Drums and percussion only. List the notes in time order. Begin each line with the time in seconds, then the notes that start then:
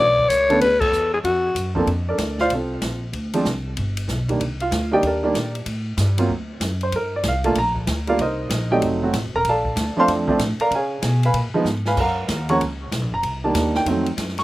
0.18 kick
0.30 kick, hi-hat pedal, ride
0.50 ride
0.61 kick, ride
0.81 kick, crash
0.93 hi-hat pedal
1.24 kick, ride
1.55 kick, hi-hat pedal, ride
1.75 kick
1.87 ride
2.18 kick, snare, hi-hat pedal, ride
2.38 snare
2.50 kick, ride
2.82 kick, snare, hi-hat pedal, ride
3.13 kick, ride
3.33 ride
3.45 kick, snare, hi-hat pedal
3.77 kick, ride
3.97 ride
4.08 kick, snare, hi-hat pedal
4.29 kick, ride
4.40 kick, ride
4.60 ride
4.72 kick, snare, hi-hat pedal, ride
5.03 kick, ride
5.34 kick, snare, hi-hat pedal, ride
5.55 ride
5.66 kick, ride
5.97 kick, snare, hi-hat pedal, ride
6.18 ride
6.29 kick
6.61 kick, snare, hi-hat pedal, ride
6.81 ride
6.92 kick, ride
7.23 kick, snare, hi-hat pedal, ride
7.44 ride
7.55 kick, ride
7.76 kick
7.87 kick, snare, hi-hat pedal, ride
8.07 ride
8.19 kick, ride
8.50 kick, snare, hi-hat pedal, ride
8.82 kick, ride
9.13 kick, snare, hi-hat pedal, ride
9.45 kick, ride
9.65 kick
9.76 kick, snare, hi-hat pedal, ride
10.08 kick, snare, ride
10.28 kick
10.39 snare, hi-hat pedal, ride
10.60 ride
10.71 kick, ride
11.02 kick, snare, hi-hat pedal, ride
11.23 ride
11.34 kick, ride
11.65 snare, hi-hat pedal
11.85 snare
11.97 kick, crash
12.28 kick, snare, hi-hat pedal, ride
12.49 ride
12.60 kick, ride
12.92 kick, snare, hi-hat pedal, ride
13.23 kick, ride
13.55 kick, snare, hi-hat pedal, ride
13.75 snare
13.86 kick, ride
14.06 ride
14.17 kick, snare, hi-hat pedal, ride
14.28 snare
14.38 snare, ride